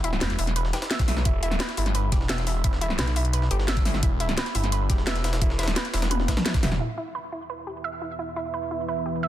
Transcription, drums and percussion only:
0.04 closed hi-hat
0.13 snare
0.21 snare, closed hi-hat
0.30 closed hi-hat
0.39 closed hi-hat, open hi-hat
0.47 snare, closed hi-hat
0.56 closed hi-hat
0.65 snare
0.73 snare, closed hi-hat
0.82 snare, closed hi-hat
0.91 snare, closed hi-hat
0.99 kick, snare, closed hi-hat
1.08 snare, closed hi-hat, open hi-hat
1.17 snare
1.25 kick, closed hi-hat
1.43 closed hi-hat
1.51 snare, closed hi-hat
1.60 snare, closed hi-hat
1.69 snare, closed hi-hat
1.77 closed hi-hat, open hi-hat
1.86 snare, closed hi-hat
1.95 closed hi-hat
2.12 kick, snare, closed hi-hat
2.21 snare
2.29 snare, closed hi-hat
2.38 snare, closed hi-hat
2.47 snare, closed hi-hat, open hi-hat
2.64 kick, closed hi-hat
2.73 snare
2.81 closed hi-hat
2.90 snare
2.99 snare, closed hi-hat
3.07 closed hi-hat
3.16 closed hi-hat, open hi-hat
3.25 closed hi-hat
3.33 closed hi-hat
3.42 snare
3.51 closed hi-hat
3.60 snare
3.68 snare, closed hi-hat
3.77 kick, closed hi-hat
3.85 snare, closed hi-hat, open hi-hat
3.94 snare
4.03 kick, closed hi-hat
4.20 closed hi-hat
4.29 snare, closed hi-hat
4.37 snare, closed hi-hat
4.46 snare, closed hi-hat
4.55 closed hi-hat, open hi-hat
4.64 snare, closed hi-hat
4.72 closed hi-hat
4.90 kick, snare, closed hi-hat
4.98 snare
5.07 snare, closed hi-hat
5.16 snare, closed hi-hat
5.24 snare, closed hi-hat, open hi-hat
5.33 snare, closed hi-hat
5.42 kick, closed hi-hat
5.50 snare
5.59 snare, closed hi-hat
5.63 snare, closed hi-hat
5.68 snare, closed hi-hat
5.76 snare, closed hi-hat
5.85 closed hi-hat
5.94 snare, closed hi-hat, open hi-hat
6.02 snare, closed hi-hat
6.11 closed hi-hat, high tom
6.20 snare, high tom
6.28 kick, snare, closed hi-hat
6.37 snare, closed hi-hat, mid tom
6.46 snare, closed hi-hat, mid tom
6.54 kick, snare, closed hi-hat
6.63 snare, closed hi-hat, mid tom, open hi-hat
6.72 snare, mid tom

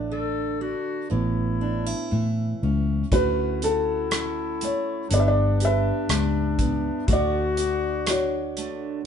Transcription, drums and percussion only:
3.12 kick, closed hi-hat
3.62 closed hi-hat
4.11 cross-stick, closed hi-hat
4.61 closed hi-hat
5.11 closed hi-hat
5.60 closed hi-hat
6.09 cross-stick, closed hi-hat
6.59 kick, closed hi-hat
7.08 kick, closed hi-hat
7.57 closed hi-hat
8.07 cross-stick, closed hi-hat
8.57 closed hi-hat

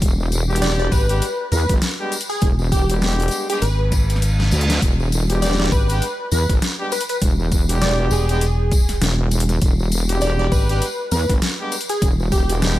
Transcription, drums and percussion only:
0.02 kick, closed hi-hat, tambourine
0.20 tambourine
0.32 closed hi-hat, tambourine
0.50 tambourine
0.56 closed hi-hat
0.62 snare, closed hi-hat, tambourine
0.92 kick, tambourine
1.09 closed hi-hat, tambourine
1.22 closed hi-hat, tambourine
1.52 closed hi-hat, tambourine
1.69 kick, snare, closed hi-hat, tambourine
1.82 snare, closed hi-hat, tambourine
2.12 closed hi-hat, tambourine
2.21 closed hi-hat
2.30 tambourine
2.41 kick, closed hi-hat, tambourine
2.59 tambourine
2.72 kick, closed hi-hat, tambourine
2.90 closed hi-hat, tambourine
3.02 snare, closed hi-hat, tambourine
3.08 closed hi-hat
3.12 closed hi-hat
3.20 closed hi-hat
3.22 closed hi-hat
3.28 closed hi-hat, tambourine
3.32 closed hi-hat
3.50 closed hi-hat, tambourine
3.62 closed hi-hat, tambourine
3.92 kick, closed hi-hat, tambourine
4.10 closed hi-hat, tambourine
4.16 snare
4.22 closed hi-hat, tambourine
4.40 snare, tambourine
4.51 closed hi-hat, tambourine
4.61 closed hi-hat
4.70 snare, closed hi-hat, tambourine
4.82 kick, closed hi-hat, tambourine
5.00 tambourine
5.12 closed hi-hat, tambourine
5.30 closed hi-hat, tambourine
5.42 snare, closed hi-hat, tambourine
5.51 snare
5.60 snare
5.66 snare
5.72 kick, tambourine
5.89 closed hi-hat, tambourine
6.02 closed hi-hat, tambourine
6.31 closed hi-hat, tambourine
6.49 kick, snare, closed hi-hat, tambourine
6.62 snare, closed hi-hat, tambourine
6.92 closed hi-hat, tambourine
7.01 closed hi-hat
7.09 closed hi-hat, tambourine
7.22 kick, closed hi-hat, tambourine
7.40 tambourine
7.52 kick, closed hi-hat, tambourine
7.69 closed hi-hat, tambourine
7.82 snare, closed hi-hat, tambourine
8.11 tambourine
8.29 closed hi-hat, tambourine
8.41 closed hi-hat, tambourine
8.72 kick, closed hi-hat, tambourine
8.89 snare, closed hi-hat, tambourine
9.02 snare, closed hi-hat, tambourine
9.31 closed hi-hat, tambourine
9.40 closed hi-hat
9.49 snare, closed hi-hat, tambourine
9.62 kick, closed hi-hat, tambourine
9.79 tambourine
9.92 closed hi-hat, tambourine
10.09 closed hi-hat, tambourine
10.21 closed hi-hat, tambourine
10.52 kick, tambourine
10.69 closed hi-hat, tambourine
10.82 closed hi-hat, tambourine
11.11 closed hi-hat, tambourine
11.29 kick, snare, closed hi-hat, tambourine
11.42 snare, closed hi-hat, tambourine
11.72 closed hi-hat, tambourine
11.81 closed hi-hat
11.89 closed hi-hat, tambourine
12.02 kick, closed hi-hat, tambourine
12.20 tambourine
12.32 kick, closed hi-hat, tambourine
12.49 closed hi-hat, tambourine
12.62 snare, closed hi-hat, tambourine

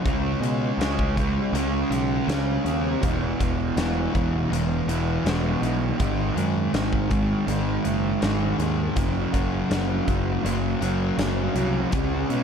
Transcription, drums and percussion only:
0.05 kick, closed hi-hat
0.43 closed hi-hat
0.81 snare, closed hi-hat
0.99 kick
1.17 kick, closed hi-hat
1.55 closed hi-hat
1.92 closed hi-hat
2.29 snare, closed hi-hat
2.66 closed hi-hat
3.03 kick, closed hi-hat
3.40 kick, closed hi-hat
3.77 snare, closed hi-hat
4.15 kick, closed hi-hat
4.53 closed hi-hat
4.89 closed hi-hat
5.26 snare, closed hi-hat
5.63 closed hi-hat
6.00 kick, closed hi-hat
6.38 closed hi-hat
6.74 snare, closed hi-hat
6.93 kick
7.11 kick, closed hi-hat
7.48 closed hi-hat
7.85 closed hi-hat
8.22 snare, closed hi-hat
8.60 closed hi-hat
8.96 kick, closed hi-hat
9.34 kick, closed hi-hat
9.71 snare, closed hi-hat
10.08 kick, closed hi-hat
10.46 closed hi-hat
10.82 closed hi-hat
11.19 snare, closed hi-hat
11.56 closed hi-hat
11.92 kick, closed hi-hat
12.30 closed hi-hat

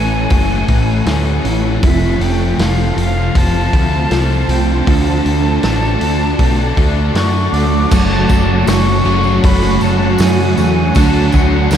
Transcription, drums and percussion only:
0.30 kick, open hi-hat
0.68 kick, open hi-hat
1.06 snare, open hi-hat
1.45 open hi-hat
1.83 kick, open hi-hat
2.21 open hi-hat
2.59 snare, open hi-hat
2.98 open hi-hat
3.35 kick, open hi-hat
3.73 kick, open hi-hat
4.11 snare, open hi-hat
4.49 open hi-hat
4.87 kick, open hi-hat
5.26 open hi-hat
5.63 snare, open hi-hat
6.01 open hi-hat
6.39 kick, open hi-hat
6.77 kick, open hi-hat
7.15 snare, open hi-hat
7.54 open hi-hat
7.91 kick, crash, tambourine
8.11 tambourine
8.29 kick, tambourine
8.67 snare, open hi-hat, tambourine
8.85 tambourine
9.05 tambourine
9.23 tambourine
9.44 kick, open hi-hat
9.62 tambourine
9.81 tambourine
10.18 snare, open hi-hat, tambourine
10.37 tambourine
10.57 tambourine
10.95 kick, open hi-hat, tambourine
11.14 tambourine
11.32 kick, tambourine
11.71 snare, open hi-hat, tambourine

